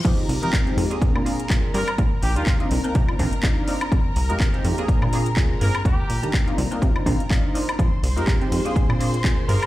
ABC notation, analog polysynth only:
X:1
M:4/4
L:1/16
Q:"Swing 16ths" 1/4=124
K:Fdor
V:1 name="Analog polysynth"
[A,CEFG]3 [A,CEFG]2 [A,CEFG]2 [B,CDFA]3 [B,CDFA] z [B,CDFA]2 [B,CDFA] z | z3 [G,B,DEG]2 [B,CDEF]2 [B,CDEF]3 [B,CDEF] z [B,CDEF]2 [B,CDEF] z | z3 [A,CEFG]2 [A,CEFG]2 [B,CDFA]3 [B,CDFA] z [B,CDFA]2 [B,CDFA] z | z3 [G,B,DEG]2 [B,CDEF]2 [B,CDEF]3 [B,CDEF] z [B,CDEF]2 [B,CDEF] z |
z3 [A,CEFG]2 [A,CEFG]2 [B,CDFA]3 [B,CDFA] z [B,CDFA]2 [B,CDFA] z |]